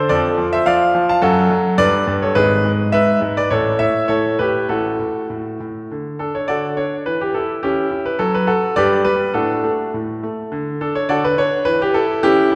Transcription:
0.09 0.37 F2 medium
0.09 0.36 F3 medium
0.09 0.49 A4 medium
0.09 0.48 D5 loud
0.37 0.65 F3 medium
0.53 0.66 C5 medium
0.53 0.66 E5 medium
0.66 0.93 F3 medium
0.66 1.06 D5 medium
0.66 1.04 F5 loud
0.95 1.21 F3 medium
1.09 1.22 F5 medium
1.09 1.23 A5 medium
1.22 1.49 F#2 medium
1.22 1.49 F#3 medium
1.22 1.75 F#4 medium
1.22 1.79 A4 loud
1.50 1.78 F#3 medium
1.78 2.06 G2 medium
1.78 2.19 B4 medium
1.78 2.04 D5 loud
2.07 2.35 G2 medium
2.22 2.36 A4 medium
2.22 2.36 C#5 medium
2.35 2.63 G#1 medium
2.35 2.62 G#2 medium
2.35 2.89 G#4 medium
2.35 2.70 B4 loud
2.64 2.92 G#2 medium
2.92 3.20 G#2 medium
2.92 3.33 B4 medium
2.92 3.18 E5 loud
3.21 3.49 G#2 medium
3.37 3.50 B4 medium
3.37 3.51 D5 medium
3.50 3.79 A1 medium
3.50 3.78 A2 medium
3.50 3.78 A4 medium
3.50 3.77 C#5 medium
3.79 4.07 A2 medium
3.79 4.07 C#5 medium
3.79 4.09 E5 medium
4.08 4.38 A2 medium
4.08 4.37 A4 medium
4.08 4.36 C#5 medium
4.39 4.68 A2 medium
4.39 4.68 G4 medium
4.39 4.67 B4 medium
4.69 4.99 A1 medium
4.69 4.98 A2 medium
4.69 5.57 F#4 medium
4.69 5.24 A4 medium
5.00 5.28 A2 soft
5.30 5.59 A2 medium
5.60 5.90 A2 medium
5.91 6.19 D3 soft
6.19 6.48 D4 soft
6.19 6.34 A4 medium
6.35 6.49 C#5 medium
6.48 6.77 D3 soft
6.48 6.76 F#4 medium
6.48 6.76 A4 medium
6.48 6.66 D5 medium
6.77 7.05 D4 soft
6.77 6.94 C#5 medium
7.06 7.34 E3 medium
7.06 7.21 B4 medium
7.21 7.35 G4 medium
7.34 7.62 E4 soft
7.34 7.51 A4 medium
7.63 7.91 E3 medium
7.63 8.03 C#4 medium
7.63 7.89 E4 medium
7.63 8.05 G4 medium
7.91 8.19 E4 medium
8.06 8.20 B4 medium
8.19 8.47 F#3 medium
8.19 8.34 A4 medium
8.35 8.49 B4 medium
8.47 8.76 F#4 medium
8.47 8.74 A4 medium
8.76 9.05 G2 medium
8.76 9.04 G4 medium
8.76 9.03 B4 medium
8.76 9.05 D5 loud
9.05 9.34 G3 medium
9.05 9.32 B4 loud
9.34 9.63 A2 medium
9.34 9.90 D4 medium
9.34 9.90 F#4 medium
9.34 9.70 A4 medium
9.63 9.93 A3 medium
9.94 10.23 A2 medium
10.23 10.52 A3 medium
10.52 10.80 D3 medium
10.81 11.09 D4 medium
10.81 10.96 A4 medium
10.95 11.10 C#5 medium
11.09 11.37 D3 medium
11.09 11.23 F#4 medium
11.09 11.23 A4 medium
11.09 11.24 D5 medium
11.24 11.39 B4 medium
11.38 11.66 D4 medium
11.38 11.67 C#5 medium
11.65 11.94 E3 medium
11.65 11.81 B4 loud
11.82 11.96 G4 medium
11.94 12.22 E4 medium
11.94 12.23 A4 medium
12.23 12.51 E3 medium
12.23 12.55 C#4 medium
12.23 12.50 E4 medium
12.23 12.55 G4 loud
12.52 12.55 E4 medium

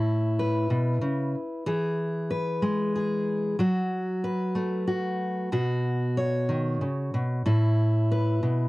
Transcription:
0.00 0.70 A2 medium
0.00 1.66 E4 medium
0.39 1.64 B4 medium
0.70 1.01 B2 medium
1.01 1.34 C#3 medium
1.66 3.56 E3 medium
1.66 2.94 G#4 medium
2.30 3.56 B4 medium
2.62 3.55 G#3 medium
2.96 3.56 G#4 medium
3.59 5.49 F#3 medium
3.59 4.86 F#4 medium
4.24 5.49 B4 medium
4.55 5.49 A3 medium
4.87 5.49 F#4 medium
5.52 6.81 B2 medium
5.52 7.43 F#4 medium
6.17 7.43 C#5 medium
6.49 6.82 D#3 medium
6.81 7.14 C#3 medium
7.14 7.45 B2 medium
7.46 8.42 A2 medium
7.46 8.69 E4 medium
8.11 8.69 B4 medium
8.43 8.69 B2 medium

